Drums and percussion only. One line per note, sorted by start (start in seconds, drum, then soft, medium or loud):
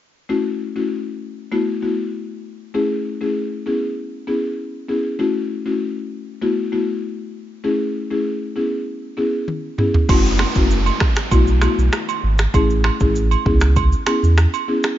9.48 high tom medium
9.78 mid tom medium
9.94 floor tom medium
10.09 kick loud
10.09 crash medium
10.09 high agogo medium
10.09 shaker medium
10.25 shaker medium
10.39 finger snap medium
10.39 cross-stick medium
10.39 high agogo medium
10.55 kick medium
10.55 shaker soft
10.71 shaker medium
10.86 high agogo medium
10.86 shaker medium
11.00 finger snap medium
11.00 kick medium
11.00 cross-stick medium
11.16 finger snap medium
11.16 cross-stick medium
11.16 shaker medium
11.31 kick loud
11.31 high agogo medium
11.31 shaker medium
11.47 shaker medium
11.61 finger snap medium
11.61 cross-stick loud
11.61 high agogo medium
11.61 shaker medium
11.79 shaker medium
11.93 finger snap medium
11.93 cross-stick loud
11.93 shaker medium
12.09 high agogo medium
12.09 shaker medium
12.38 finger snap medium
12.38 cross-stick medium
12.38 shaker medium
12.54 kick loud
12.54 high agogo medium
12.54 shaker medium
12.70 shaker medium
12.84 finger snap medium
12.84 cross-stick loud
12.84 high agogo medium
13.00 kick medium
13.00 shaker soft
13.16 shaker medium
13.31 high agogo medium
13.31 shaker medium
13.46 kick medium
13.61 finger snap medium
13.61 cross-stick medium
13.61 shaker medium
13.76 kick loud
13.76 high agogo medium
13.76 shaker medium
13.92 shaker medium
14.06 finger snap medium
14.06 cross-stick medium
14.06 high agogo medium
14.06 shaker medium
14.24 shaker medium
14.37 finger snap medium
14.37 cross-stick loud
14.37 shaker medium
14.54 high agogo medium
14.54 shaker medium
14.83 finger snap medium
14.83 cross-stick medium
14.83 shaker medium